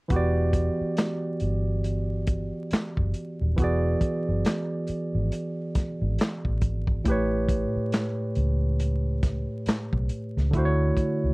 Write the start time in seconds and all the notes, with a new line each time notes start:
0.08 E1 E3 B3 F#4, kick, closed hi-hat
0.14 G4 D5
0.53 kick, closed hi-hat
0.81 muted fingered electric bass stroke
0.97 snare, clap, closed hi-hat
1.40 G1, closed hi-hat
1.84 closed hi-hat
2.27 kick, closed hi-hat
2.71 muted fingered electric bass stroke, snare, clap, closed hi-hat
2.97 F#1, kick
3.14 closed hi-hat
3.41 D#1
3.56 E1 E3 B3 F#4, kick, closed hi-hat
3.62 G#4 D5
4.01 kick, closed hi-hat
4.28 F#1
4.45 snare, clap, closed hi-hat
4.88 muted fingered electric bass stroke, closed hi-hat
5.15 G#1
5.32 closed hi-hat
5.75 muted fingered electric bass stroke, kick, snare, closed hi-hat
6.01 G#1
6.19 snare, clap, closed hi-hat
6.45 A1, kick
6.61 G#1, kick, closed hi-hat
6.87 kick
7.04 A1 A2 A3 G4, kick, closed hi-hat
7.10 B4 C#5
7.49 kick, closed hi-hat
7.76 muted fingered electric bass stroke
7.92 snare, clap, closed hi-hat
8.35 C#2, closed hi-hat
8.80 closed hi-hat
9.23 kick, snare, closed hi-hat
9.66 muted fingered electric bass stroke, snare, clap, closed hi-hat
9.93 B1, kick
10.09 closed hi-hat
10.37 C#2, snare
10.51 D2 D3 A3 E4, kick, closed hi-hat
10.57 F#4 C5
10.65 C#5
10.97 kick, closed hi-hat
11.24 C#2